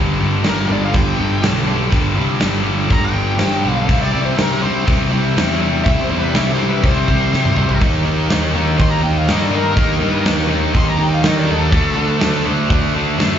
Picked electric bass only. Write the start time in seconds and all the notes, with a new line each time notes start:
Already playing: G1
0.20 G1
0.45 G1
0.69 G1
0.95 G1
1.19 G1
1.42 B1
1.92 G1
2.17 C2
2.41 G1
2.90 G1
3.14 G1
3.40 G2
3.64 B1
3.89 C2
4.14 C2
4.38 C2
4.63 C2
4.88 C2
5.12 C2
5.37 E2
5.86 C2
6.10 E2
6.34 C2
6.84 C2
7.09 C2
7.33 C3
7.57 C2
7.82 D#2
8.05 D#2
8.30 D#2
8.54 D#2
8.80 D#2
9.04 D#2
9.29 G2
9.77 D#2
10.01 G2
10.25 D#2
10.75 D#2
10.99 D#2
11.24 D#3
11.48 D#2
11.73 D2
11.98 D2
12.22 D2
12.46 D2
12.71 D2
12.95 D2
13.19 F#2